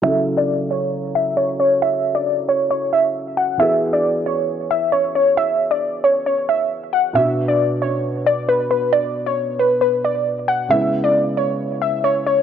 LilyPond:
<<
  \new Staff \with { instrumentName = "Synth pluck" } { \time 4/4 \key fis \minor \tempo 4 = 135 e''8. d''8. cis''4 e''8 cis''8 cis''8 | e''8. d''8. cis''8 cis''8 e''4 fis''8 | e''8. d''8. cis''4 e''8 cis''8 cis''8 | e''8. d''8. cis''8 cis''8 e''4 fis''8 |
e''8. d''8. cis''4 d''8 b'8 b'8 | d''8. cis''8. b'8 b'8 d''4 fis''8 | e''8. d''8. cis''4 e''8 cis''8 cis''8 | }
  \new Staff \with { instrumentName = "Felt piano" } { \time 4/4 \key fis \minor <cis fis e' a'>1~ | <cis fis e' a'>1 | <e b fis' gis'>1~ | <e b fis' gis'>1 |
<b, b d' fis'>1~ | <b, b d' fis'>1 | <cis gis b e'>1 | }
>>